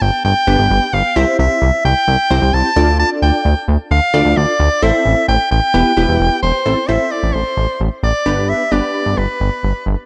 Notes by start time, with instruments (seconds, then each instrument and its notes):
0.01 analog synth bass G1, soprano saxophone G5
0.24 analog synth bass G1, soprano saxophone G5
0.47 analog synth bass G1, analog polysynth B3 D4 G4 B4
0.59 analog synth bass G1
0.70 analog synth bass G1
0.93 analog synth bass G1, soprano saxophone F5
1.16 analog synth bass C2, analog polysynth C4 E4 G4 C5, soprano saxophone E5
1.39 analog synth bass C2, soprano saxophone E5
1.62 analog synth bass C2
1.85 analog synth bass C2, soprano saxophone G5
2.08 analog synth bass C2
2.30 analog synth bass C2, analog polysynth C4 E4 G4 C5
2.42 analog synth bass C2
2.53 analog synth bass C2, soprano saxophone A5
2.76 analog synth bass D2, analog polysynth D4 F4 A4 D5
2.99 soprano saxophone A5
3.22 analog synth bass D2, soprano saxophone G5
3.45 analog synth bass D2
3.68 analog synth bass D2
3.91 analog synth bass D2, soprano saxophone F5
4.14 analog synth bass D2, analog polysynth D4 F4 A4 D5
4.25 analog synth bass D2
4.37 analog synth bass D2, soprano saxophone D5
4.60 analog synth bass D2
4.82 analog synth bass A1, analog polysynth C4 E4 A4 C5, soprano saxophone E5
5.05 analog synth bass A1
5.28 analog synth bass A1, soprano saxophone G5
5.51 analog synth bass A1, soprano saxophone G5
5.74 analog synth bass E1, analog polysynth B3 E4 G4 B4
5.97 analog synth bass E1, analog polysynth B3 E4 G4 B4
6.08 analog synth bass E1
6.20 analog synth bass E1
6.43 analog synth bass E1, soprano saxophone C5
6.66 analog synth bass A1, analog polysynth C4 E4 A4 C5
6.88 analog synth bass A1, analog polysynth C4 E4 A4 C5, soprano saxophone E5
7.11 soprano saxophone D5
7.23 analog synth bass A1
7.34 analog synth bass A1, soprano saxophone C5
7.57 analog synth bass A1
7.80 analog synth bass A1
8.03 analog synth bass A1, soprano saxophone D5
8.26 analog synth bass G1, analog polysynth B3 D4 G4 B4
8.49 soprano saxophone E5
8.72 analog synth bass G1, analog polysynth B3 D4 G4 B4, soprano saxophone D5
9.06 analog synth bass G1
9.18 analog synth bass G1, soprano saxophone B4
9.40 analog synth bass G1
9.63 analog synth bass G1
9.86 analog synth bass G1